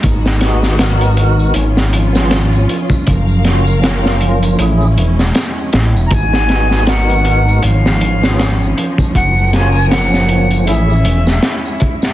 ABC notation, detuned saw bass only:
X:1
M:4/4
L:1/16
Q:"Swing 16ths" 1/4=79
K:G#dor
V:1 name="Detuned saw bass" clef=bass
G,,,8 G,,,6 z2 | F,,,8 =A,,,2 =E,,,2 z2 A,,, E,,, | G,,,8 G,,,6 z2 | F,,,8 =A,,,2 =E,,,2 z4 |]